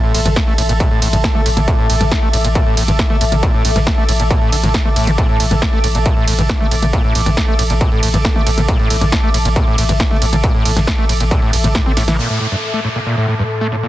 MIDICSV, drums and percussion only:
0, 0, Header, 1, 2, 480
1, 0, Start_track
1, 0, Tempo, 437956
1, 1839, Time_signature, 4, 2, 24, 8
1, 15216, End_track
2, 0, Start_track
2, 0, Title_t, "Drums"
2, 159, Note_on_c, 9, 46, 111
2, 159, Note_on_c, 9, 51, 78
2, 269, Note_off_c, 9, 46, 0
2, 269, Note_off_c, 9, 51, 0
2, 280, Note_on_c, 9, 42, 71
2, 280, Note_on_c, 9, 47, 93
2, 389, Note_off_c, 9, 42, 0
2, 389, Note_off_c, 9, 47, 0
2, 398, Note_on_c, 9, 38, 126
2, 398, Note_on_c, 9, 42, 75
2, 399, Note_on_c, 9, 36, 127
2, 508, Note_off_c, 9, 36, 0
2, 508, Note_off_c, 9, 38, 0
2, 508, Note_off_c, 9, 42, 0
2, 638, Note_on_c, 9, 46, 100
2, 638, Note_on_c, 9, 51, 77
2, 748, Note_off_c, 9, 46, 0
2, 748, Note_off_c, 9, 51, 0
2, 760, Note_on_c, 9, 42, 72
2, 869, Note_off_c, 9, 42, 0
2, 878, Note_on_c, 9, 36, 127
2, 878, Note_on_c, 9, 42, 70
2, 988, Note_off_c, 9, 36, 0
2, 988, Note_off_c, 9, 42, 0
2, 1118, Note_on_c, 9, 46, 113
2, 1118, Note_on_c, 9, 51, 79
2, 1228, Note_off_c, 9, 46, 0
2, 1228, Note_off_c, 9, 51, 0
2, 1240, Note_on_c, 9, 42, 70
2, 1240, Note_on_c, 9, 47, 79
2, 1350, Note_off_c, 9, 42, 0
2, 1350, Note_off_c, 9, 47, 0
2, 1358, Note_on_c, 9, 38, 127
2, 1358, Note_on_c, 9, 42, 71
2, 1359, Note_on_c, 9, 36, 127
2, 1468, Note_off_c, 9, 36, 0
2, 1468, Note_off_c, 9, 38, 0
2, 1468, Note_off_c, 9, 42, 0
2, 1480, Note_on_c, 9, 47, 82
2, 1590, Note_off_c, 9, 47, 0
2, 1598, Note_on_c, 9, 46, 93
2, 1598, Note_on_c, 9, 51, 74
2, 1708, Note_off_c, 9, 46, 0
2, 1708, Note_off_c, 9, 51, 0
2, 1720, Note_on_c, 9, 42, 69
2, 1720, Note_on_c, 9, 47, 91
2, 1830, Note_off_c, 9, 42, 0
2, 1830, Note_off_c, 9, 47, 0
2, 1839, Note_on_c, 9, 36, 127
2, 1839, Note_on_c, 9, 42, 71
2, 1948, Note_off_c, 9, 36, 0
2, 1948, Note_off_c, 9, 42, 0
2, 2078, Note_on_c, 9, 46, 109
2, 2078, Note_on_c, 9, 51, 75
2, 2188, Note_off_c, 9, 46, 0
2, 2188, Note_off_c, 9, 51, 0
2, 2199, Note_on_c, 9, 42, 67
2, 2199, Note_on_c, 9, 47, 93
2, 2309, Note_off_c, 9, 42, 0
2, 2309, Note_off_c, 9, 47, 0
2, 2318, Note_on_c, 9, 38, 122
2, 2318, Note_on_c, 9, 42, 73
2, 2319, Note_on_c, 9, 36, 127
2, 2427, Note_off_c, 9, 38, 0
2, 2427, Note_off_c, 9, 42, 0
2, 2428, Note_off_c, 9, 36, 0
2, 2558, Note_on_c, 9, 46, 101
2, 2558, Note_on_c, 9, 51, 77
2, 2668, Note_off_c, 9, 46, 0
2, 2668, Note_off_c, 9, 51, 0
2, 2680, Note_on_c, 9, 42, 71
2, 2789, Note_off_c, 9, 42, 0
2, 2798, Note_on_c, 9, 42, 71
2, 2799, Note_on_c, 9, 36, 127
2, 2908, Note_off_c, 9, 42, 0
2, 2909, Note_off_c, 9, 36, 0
2, 3038, Note_on_c, 9, 46, 112
2, 3038, Note_on_c, 9, 51, 79
2, 3148, Note_off_c, 9, 46, 0
2, 3148, Note_off_c, 9, 51, 0
2, 3159, Note_on_c, 9, 42, 67
2, 3159, Note_on_c, 9, 47, 82
2, 3269, Note_off_c, 9, 42, 0
2, 3269, Note_off_c, 9, 47, 0
2, 3278, Note_on_c, 9, 38, 119
2, 3278, Note_on_c, 9, 42, 71
2, 3279, Note_on_c, 9, 36, 127
2, 3388, Note_off_c, 9, 36, 0
2, 3388, Note_off_c, 9, 38, 0
2, 3388, Note_off_c, 9, 42, 0
2, 3399, Note_on_c, 9, 47, 81
2, 3509, Note_off_c, 9, 47, 0
2, 3518, Note_on_c, 9, 46, 99
2, 3518, Note_on_c, 9, 51, 74
2, 3627, Note_off_c, 9, 46, 0
2, 3627, Note_off_c, 9, 51, 0
2, 3640, Note_on_c, 9, 42, 68
2, 3640, Note_on_c, 9, 47, 91
2, 3749, Note_off_c, 9, 42, 0
2, 3749, Note_off_c, 9, 47, 0
2, 3758, Note_on_c, 9, 42, 69
2, 3759, Note_on_c, 9, 36, 126
2, 3867, Note_off_c, 9, 42, 0
2, 3868, Note_off_c, 9, 36, 0
2, 3998, Note_on_c, 9, 46, 108
2, 3998, Note_on_c, 9, 51, 77
2, 4107, Note_off_c, 9, 46, 0
2, 4107, Note_off_c, 9, 51, 0
2, 4119, Note_on_c, 9, 38, 35
2, 4119, Note_on_c, 9, 42, 66
2, 4119, Note_on_c, 9, 47, 93
2, 4229, Note_off_c, 9, 38, 0
2, 4229, Note_off_c, 9, 42, 0
2, 4229, Note_off_c, 9, 47, 0
2, 4239, Note_on_c, 9, 36, 124
2, 4239, Note_on_c, 9, 38, 116
2, 4239, Note_on_c, 9, 42, 68
2, 4348, Note_off_c, 9, 36, 0
2, 4348, Note_off_c, 9, 38, 0
2, 4348, Note_off_c, 9, 42, 0
2, 4478, Note_on_c, 9, 46, 97
2, 4478, Note_on_c, 9, 51, 77
2, 4588, Note_off_c, 9, 46, 0
2, 4588, Note_off_c, 9, 51, 0
2, 4599, Note_on_c, 9, 42, 68
2, 4709, Note_off_c, 9, 42, 0
2, 4719, Note_on_c, 9, 36, 127
2, 4719, Note_on_c, 9, 42, 67
2, 4828, Note_off_c, 9, 36, 0
2, 4828, Note_off_c, 9, 42, 0
2, 4959, Note_on_c, 9, 46, 111
2, 4959, Note_on_c, 9, 51, 80
2, 5068, Note_off_c, 9, 46, 0
2, 5068, Note_off_c, 9, 51, 0
2, 5080, Note_on_c, 9, 42, 64
2, 5080, Note_on_c, 9, 47, 85
2, 5190, Note_off_c, 9, 42, 0
2, 5190, Note_off_c, 9, 47, 0
2, 5198, Note_on_c, 9, 38, 117
2, 5198, Note_on_c, 9, 42, 68
2, 5199, Note_on_c, 9, 36, 124
2, 5308, Note_off_c, 9, 38, 0
2, 5308, Note_off_c, 9, 42, 0
2, 5309, Note_off_c, 9, 36, 0
2, 5320, Note_on_c, 9, 47, 82
2, 5429, Note_off_c, 9, 47, 0
2, 5439, Note_on_c, 9, 46, 94
2, 5439, Note_on_c, 9, 51, 75
2, 5548, Note_off_c, 9, 46, 0
2, 5548, Note_off_c, 9, 51, 0
2, 5561, Note_on_c, 9, 42, 67
2, 5561, Note_on_c, 9, 47, 96
2, 5670, Note_off_c, 9, 42, 0
2, 5670, Note_off_c, 9, 47, 0
2, 5679, Note_on_c, 9, 36, 123
2, 5680, Note_on_c, 9, 42, 66
2, 5789, Note_off_c, 9, 36, 0
2, 5789, Note_off_c, 9, 42, 0
2, 5918, Note_on_c, 9, 46, 104
2, 5918, Note_on_c, 9, 51, 79
2, 6028, Note_off_c, 9, 46, 0
2, 6028, Note_off_c, 9, 51, 0
2, 6040, Note_on_c, 9, 42, 65
2, 6040, Note_on_c, 9, 47, 95
2, 6149, Note_off_c, 9, 42, 0
2, 6149, Note_off_c, 9, 47, 0
2, 6159, Note_on_c, 9, 36, 123
2, 6159, Note_on_c, 9, 38, 119
2, 6159, Note_on_c, 9, 42, 65
2, 6268, Note_off_c, 9, 38, 0
2, 6268, Note_off_c, 9, 42, 0
2, 6269, Note_off_c, 9, 36, 0
2, 6399, Note_on_c, 9, 46, 96
2, 6399, Note_on_c, 9, 51, 80
2, 6508, Note_off_c, 9, 46, 0
2, 6508, Note_off_c, 9, 51, 0
2, 6520, Note_on_c, 9, 42, 62
2, 6629, Note_off_c, 9, 42, 0
2, 6638, Note_on_c, 9, 42, 68
2, 6639, Note_on_c, 9, 36, 123
2, 6748, Note_off_c, 9, 42, 0
2, 6749, Note_off_c, 9, 36, 0
2, 6878, Note_on_c, 9, 46, 111
2, 6878, Note_on_c, 9, 51, 82
2, 6987, Note_off_c, 9, 46, 0
2, 6987, Note_off_c, 9, 51, 0
2, 6999, Note_on_c, 9, 42, 65
2, 6999, Note_on_c, 9, 47, 89
2, 7109, Note_off_c, 9, 42, 0
2, 7109, Note_off_c, 9, 47, 0
2, 7118, Note_on_c, 9, 38, 120
2, 7118, Note_on_c, 9, 42, 64
2, 7119, Note_on_c, 9, 36, 127
2, 7228, Note_off_c, 9, 36, 0
2, 7228, Note_off_c, 9, 38, 0
2, 7228, Note_off_c, 9, 42, 0
2, 7240, Note_on_c, 9, 47, 87
2, 7350, Note_off_c, 9, 47, 0
2, 7359, Note_on_c, 9, 46, 93
2, 7359, Note_on_c, 9, 51, 81
2, 7468, Note_off_c, 9, 46, 0
2, 7468, Note_off_c, 9, 51, 0
2, 7480, Note_on_c, 9, 42, 66
2, 7480, Note_on_c, 9, 47, 99
2, 7590, Note_off_c, 9, 42, 0
2, 7590, Note_off_c, 9, 47, 0
2, 7598, Note_on_c, 9, 42, 64
2, 7599, Note_on_c, 9, 36, 120
2, 7708, Note_off_c, 9, 36, 0
2, 7708, Note_off_c, 9, 42, 0
2, 7838, Note_on_c, 9, 46, 99
2, 7838, Note_on_c, 9, 51, 83
2, 7948, Note_off_c, 9, 46, 0
2, 7948, Note_off_c, 9, 51, 0
2, 7960, Note_on_c, 9, 42, 63
2, 7960, Note_on_c, 9, 47, 99
2, 8070, Note_off_c, 9, 42, 0
2, 8070, Note_off_c, 9, 47, 0
2, 8079, Note_on_c, 9, 36, 117
2, 8079, Note_on_c, 9, 38, 125
2, 8079, Note_on_c, 9, 42, 67
2, 8188, Note_off_c, 9, 38, 0
2, 8188, Note_off_c, 9, 42, 0
2, 8189, Note_off_c, 9, 36, 0
2, 8319, Note_on_c, 9, 46, 93
2, 8319, Note_on_c, 9, 51, 84
2, 8428, Note_off_c, 9, 46, 0
2, 8428, Note_off_c, 9, 51, 0
2, 8439, Note_on_c, 9, 42, 64
2, 8549, Note_off_c, 9, 42, 0
2, 8559, Note_on_c, 9, 36, 118
2, 8559, Note_on_c, 9, 42, 67
2, 8668, Note_off_c, 9, 42, 0
2, 8669, Note_off_c, 9, 36, 0
2, 8799, Note_on_c, 9, 46, 104
2, 8799, Note_on_c, 9, 51, 85
2, 8908, Note_off_c, 9, 46, 0
2, 8908, Note_off_c, 9, 51, 0
2, 8921, Note_on_c, 9, 42, 64
2, 8921, Note_on_c, 9, 47, 87
2, 9030, Note_off_c, 9, 42, 0
2, 9030, Note_off_c, 9, 47, 0
2, 9039, Note_on_c, 9, 36, 119
2, 9039, Note_on_c, 9, 38, 123
2, 9039, Note_on_c, 9, 42, 65
2, 9148, Note_off_c, 9, 36, 0
2, 9149, Note_off_c, 9, 38, 0
2, 9149, Note_off_c, 9, 42, 0
2, 9159, Note_on_c, 9, 47, 89
2, 9269, Note_off_c, 9, 47, 0
2, 9278, Note_on_c, 9, 46, 88
2, 9278, Note_on_c, 9, 51, 82
2, 9388, Note_off_c, 9, 46, 0
2, 9388, Note_off_c, 9, 51, 0
2, 9400, Note_on_c, 9, 42, 64
2, 9400, Note_on_c, 9, 47, 98
2, 9510, Note_off_c, 9, 42, 0
2, 9510, Note_off_c, 9, 47, 0
2, 9518, Note_on_c, 9, 42, 65
2, 9519, Note_on_c, 9, 36, 117
2, 9628, Note_off_c, 9, 36, 0
2, 9628, Note_off_c, 9, 42, 0
2, 9758, Note_on_c, 9, 46, 104
2, 9758, Note_on_c, 9, 51, 84
2, 9868, Note_off_c, 9, 46, 0
2, 9868, Note_off_c, 9, 51, 0
2, 9880, Note_on_c, 9, 42, 67
2, 9880, Note_on_c, 9, 47, 95
2, 9989, Note_off_c, 9, 42, 0
2, 9989, Note_off_c, 9, 47, 0
2, 9999, Note_on_c, 9, 36, 122
2, 9999, Note_on_c, 9, 38, 127
2, 9999, Note_on_c, 9, 42, 67
2, 10108, Note_off_c, 9, 36, 0
2, 10109, Note_off_c, 9, 38, 0
2, 10109, Note_off_c, 9, 42, 0
2, 10239, Note_on_c, 9, 46, 90
2, 10239, Note_on_c, 9, 51, 84
2, 10349, Note_off_c, 9, 46, 0
2, 10349, Note_off_c, 9, 51, 0
2, 10361, Note_on_c, 9, 42, 66
2, 10471, Note_off_c, 9, 42, 0
2, 10479, Note_on_c, 9, 36, 116
2, 10480, Note_on_c, 9, 42, 65
2, 10588, Note_off_c, 9, 36, 0
2, 10589, Note_off_c, 9, 42, 0
2, 10720, Note_on_c, 9, 46, 107
2, 10720, Note_on_c, 9, 51, 87
2, 10830, Note_off_c, 9, 46, 0
2, 10830, Note_off_c, 9, 51, 0
2, 10841, Note_on_c, 9, 42, 63
2, 10841, Note_on_c, 9, 47, 86
2, 10951, Note_off_c, 9, 42, 0
2, 10951, Note_off_c, 9, 47, 0
2, 10959, Note_on_c, 9, 36, 117
2, 10959, Note_on_c, 9, 38, 122
2, 10959, Note_on_c, 9, 42, 68
2, 11068, Note_off_c, 9, 36, 0
2, 11069, Note_off_c, 9, 38, 0
2, 11069, Note_off_c, 9, 42, 0
2, 11080, Note_on_c, 9, 47, 84
2, 11190, Note_off_c, 9, 47, 0
2, 11198, Note_on_c, 9, 46, 92
2, 11198, Note_on_c, 9, 51, 81
2, 11308, Note_off_c, 9, 46, 0
2, 11308, Note_off_c, 9, 51, 0
2, 11320, Note_on_c, 9, 42, 66
2, 11320, Note_on_c, 9, 47, 96
2, 11429, Note_off_c, 9, 42, 0
2, 11429, Note_off_c, 9, 47, 0
2, 11438, Note_on_c, 9, 42, 71
2, 11439, Note_on_c, 9, 36, 116
2, 11547, Note_off_c, 9, 42, 0
2, 11548, Note_off_c, 9, 36, 0
2, 11677, Note_on_c, 9, 46, 99
2, 11677, Note_on_c, 9, 51, 83
2, 11787, Note_off_c, 9, 46, 0
2, 11787, Note_off_c, 9, 51, 0
2, 11800, Note_on_c, 9, 38, 39
2, 11800, Note_on_c, 9, 42, 70
2, 11800, Note_on_c, 9, 47, 93
2, 11909, Note_off_c, 9, 38, 0
2, 11909, Note_off_c, 9, 42, 0
2, 11909, Note_off_c, 9, 47, 0
2, 11918, Note_on_c, 9, 36, 118
2, 11918, Note_on_c, 9, 38, 127
2, 11918, Note_on_c, 9, 42, 71
2, 12028, Note_off_c, 9, 36, 0
2, 12028, Note_off_c, 9, 38, 0
2, 12028, Note_off_c, 9, 42, 0
2, 12158, Note_on_c, 9, 46, 89
2, 12158, Note_on_c, 9, 51, 84
2, 12268, Note_off_c, 9, 46, 0
2, 12268, Note_off_c, 9, 51, 0
2, 12280, Note_on_c, 9, 42, 67
2, 12389, Note_off_c, 9, 42, 0
2, 12398, Note_on_c, 9, 36, 125
2, 12399, Note_on_c, 9, 42, 70
2, 12508, Note_off_c, 9, 36, 0
2, 12508, Note_off_c, 9, 42, 0
2, 12639, Note_on_c, 9, 46, 108
2, 12639, Note_on_c, 9, 51, 82
2, 12748, Note_off_c, 9, 46, 0
2, 12748, Note_off_c, 9, 51, 0
2, 12760, Note_on_c, 9, 42, 69
2, 12760, Note_on_c, 9, 47, 85
2, 12869, Note_off_c, 9, 42, 0
2, 12869, Note_off_c, 9, 47, 0
2, 12877, Note_on_c, 9, 38, 127
2, 12877, Note_on_c, 9, 42, 69
2, 12878, Note_on_c, 9, 36, 118
2, 12987, Note_off_c, 9, 38, 0
2, 12987, Note_off_c, 9, 42, 0
2, 12988, Note_off_c, 9, 36, 0
2, 12999, Note_on_c, 9, 47, 86
2, 13109, Note_off_c, 9, 47, 0
2, 13118, Note_on_c, 9, 38, 61
2, 13118, Note_on_c, 9, 46, 88
2, 13118, Note_on_c, 9, 51, 82
2, 13227, Note_off_c, 9, 38, 0
2, 13227, Note_off_c, 9, 46, 0
2, 13227, Note_off_c, 9, 51, 0
2, 13238, Note_on_c, 9, 38, 76
2, 13238, Note_on_c, 9, 42, 71
2, 13238, Note_on_c, 9, 47, 95
2, 13348, Note_off_c, 9, 38, 0
2, 13348, Note_off_c, 9, 42, 0
2, 13348, Note_off_c, 9, 47, 0
2, 15216, End_track
0, 0, End_of_file